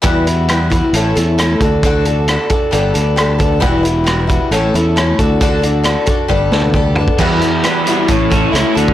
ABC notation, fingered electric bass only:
X:1
M:4/4
L:1/16
Q:1/4=134
K:Edor
V:1 name="Fingered electric bass" clef=bass
E,,8 A,,,2 E,,4 D,,2- | D,,6 z2 G,,,2 D,,6 | E,,,8 A,,,2 E,,4 D,,2- | D,,6 z2 G,,,2 D,,6 |
E,,2 z6 A,,,4 C,, z D,,2 |]